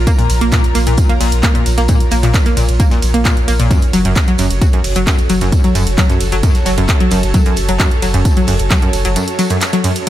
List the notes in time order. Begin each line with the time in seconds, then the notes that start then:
Already playing: F4 A#4 C#5 A#5
0.07 A#3, kick, closed hi-hat, tambourine
0.19 A#2, closed hi-hat
0.30 A#1, open hi-hat, ride, tambourine
0.41 A#1 A#3, closed hi-hat
0.52 A#2, kick, snare, clap, closed hi-hat, tambourine
0.64 closed hi-hat
0.75 A#1 A#3, snare, open hi-hat, ride, tambourine
0.87 A#1 A#2, closed hi-hat
0.97 kick, closed hi-hat, tambourine
1.09 A#3, closed hi-hat
1.21 A#1 A#2, open hi-hat, ride
1.32 A#1, closed hi-hat
1.43 A#3, kick, snare, clap, closed hi-hat, tambourine
1.55 A#2, closed hi-hat
1.66 A#1, open hi-hat, ride, tambourine
1.78 A#1 A#3, snare, closed hi-hat
1.88 A#2, kick, closed hi-hat, tambourine
2.00 closed hi-hat
2.11 A#1 A#3, snare, open hi-hat, ride, tambourine
2.23 A#1 A#2, clap, closed hi-hat
2.34 kick, snare, clap, closed hi-hat, tambourine
2.46 A#3, snare, closed hi-hat
2.57 A#1 A#2, open hi-hat, ride, tambourine
2.69 A#1, closed hi-hat
2.80 A#3, kick, closed hi-hat, tambourine
2.91 A#2, snare, open hi-hat
3.02 A#1, open hi-hat, ride, tambourine
3.14 A#1 A#3, closed hi-hat
3.25 A#2, kick, snare, clap, closed hi-hat, tambourine
3.37 closed hi-hat
3.48 A#1 A#3, open hi-hat, ride, tambourine
3.60 A#1 A#2, closed hi-hat
3.71 F#2 F#4, kick, closed hi-hat, tambourine
3.82 closed hi-hat
3.89 A4
3.93 F#1 F#3, open hi-hat, ride, tambourine
4.05 F#1 F#2, closed hi-hat
4.15 kick, snare, clap, closed hi-hat, tambourine
4.28 F#3, closed hi-hat
4.38 F#1 F#2, snare, open hi-hat, ride, tambourine
4.50 F#1, closed hi-hat
4.61 F#3, kick, closed hi-hat, tambourine
4.73 F#2, closed hi-hat
4.84 F#1, open hi-hat, ride
4.95 F#1 F#3, closed hi-hat
5.07 F#2 A5, kick, snare, clap, closed hi-hat, tambourine
5.19 closed hi-hat
5.29 F#1 F#3, open hi-hat, ride, tambourine
5.41 F#1 F#2, snare, closed hi-hat
5.52 kick, closed hi-hat, tambourine
5.64 F#3, closed hi-hat
5.75 F#1 F#2, snare, open hi-hat, ride, tambourine
5.87 F#1, closed hi-hat
5.98 F#3, kick, snare, clap, closed hi-hat, tambourine
6.10 F#2, snare, closed hi-hat
6.21 F#1, open hi-hat, ride, tambourine
6.32 F#1 F#3, closed hi-hat
6.43 F#2, kick, closed hi-hat, tambourine
6.55 snare, closed hi-hat
6.65 F#1 F#3, snare, open hi-hat, ride, tambourine
6.78 F#1 F#2, closed hi-hat
6.88 kick, snare, clap, closed hi-hat, tambourine
7.00 F#3, closed hi-hat
7.11 F#1 F#2, open hi-hat, ride, tambourine
7.23 F#1, closed hi-hat
7.34 F#3, kick, closed hi-hat, tambourine
7.46 F#2, closed hi-hat
7.56 F#1, open hi-hat, ride, tambourine
7.69 F#1 F#3, closed hi-hat
7.78 F#2, kick, snare, clap, closed hi-hat, tambourine
7.91 closed hi-hat
8.02 F#1 F#3, snare, open hi-hat, ride, tambourine
8.14 F#1 F#2, closed hi-hat
8.25 kick, closed hi-hat, tambourine
8.37 F#3, closed hi-hat
8.47 F#1 F#2, open hi-hat, ride
8.59 F#1, closed hi-hat
8.71 F#3, kick, snare, clap, closed hi-hat, tambourine
8.82 F#2, closed hi-hat
8.93 F#1, open hi-hat, ride, tambourine
9.04 F#1 F#3, snare, closed hi-hat
9.16 F#2, closed hi-hat, tambourine
9.28 closed hi-hat
9.38 F#3, snare, open hi-hat, ride, tambourine
9.50 F#2, closed hi-hat
9.61 snare, clap, closed hi-hat, tambourine
9.73 F#3, snare, closed hi-hat
9.84 F#2, open hi-hat, ride
9.96 closed hi-hat